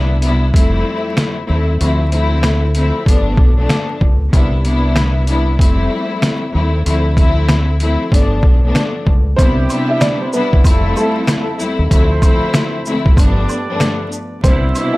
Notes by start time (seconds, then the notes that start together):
Already playing: C2 C3 G3 B3 D4 E4
0.21 C3 G3 B3 D4 E4, closed hi-hat
0.53 F1 F2 G3 A3 C4 E4, kick, closed hi-hat
1.17 snare, closed hi-hat
1.46 D#2 F2 G3 A3 C4 E4
1.78 D2 F3 A3 C4 E4, closed hi-hat
2.11 D2 F3 A3 C4 E4, closed hi-hat
2.43 snare, closed hi-hat
2.74 D2 F3 A3 C4 E4, closed hi-hat
3.04 G1 G2 F3 A3 B3 D4, kick
3.08 closed hi-hat
3.37 B1, kick
3.57 G2 F3 A3 B3 D4
3.69 snare, closed hi-hat
4.01 C#2, kick
4.32 C2 C3 G3 B3 D4 E4, kick, closed hi-hat
4.63 C3 G3 B3 D4 E4, closed hi-hat
4.96 snare, closed hi-hat
5.26 C3 G3 B3 D4 E4, closed hi-hat
5.58 F1 F2 G3 A3 C4 E4, kick, closed hi-hat
6.22 snare, closed hi-hat
6.51 D#2 F2 G3 A3 C4 E4
6.83 D2 F3 A3 C4 E4, closed hi-hat
7.16 D2 F3 A3 C4 E4, kick, closed hi-hat
7.49 snare, closed hi-hat
7.80 D2 F3 A3 C4 E4, closed hi-hat
8.10 G1 G2 F3 A3 B3 D4, kick, snare
8.14 closed hi-hat
8.43 B1, kick
8.63 G2 F3 A3 B3 D4
8.75 snare, closed hi-hat
9.07 C#2, kick
9.36 C2 C3 G3 B3 C4 D4 E4 G4 C5, kick, closed hi-hat, maracas
9.40 E4
9.68 C3 G3 B3 D4 E4, closed hi-hat, high woodblock, maracas, shaker
9.89 E4 E5
10.01 D4 D5, snare, closed hi-hat, maracas
10.22 C4 C5
10.32 C3 G3 B3 D4 E4 B4, shaker, maracas
10.53 C2, kick
10.64 F1 F2 G3 A3 C4 E4 F4 A4, kick, closed hi-hat, high woodblock, maracas
10.96 A3 A4, high woodblock, maracas, shaker
11.27 snare, closed hi-hat, maracas
11.57 F2 G3 A3 C4 E4, shaker
11.61 maracas
11.79 D#2
11.89 D2 F3 A3 C4 E4 F4 A4 C5, kick, closed hi-hat, maracas
12.21 D2 F3 A3 C4 E4, kick, closed hi-hat, high woodblock, maracas, shaker
12.54 snare, closed hi-hat, maracas
12.85 D2 F3 A3 C4 E4, shaker, maracas
13.06 C2, kick
13.15 G1 G2 F3 A3 B3 D4 G4 B4 D5, kick, closed hi-hat, high woodblock, maracas
13.49 high woodblock, maracas, shaker
13.68 G2 F3 A3 B3 D4
13.80 snare, closed hi-hat, maracas
14.12 shaker, maracas
14.42 C2 C3 G3 B3 C4 D4 E4 C5 E5, kick, closed hi-hat, maracas
14.74 B2 C3 G3 D4 E4, closed hi-hat, high woodblock, maracas, shaker
14.93 E4 E5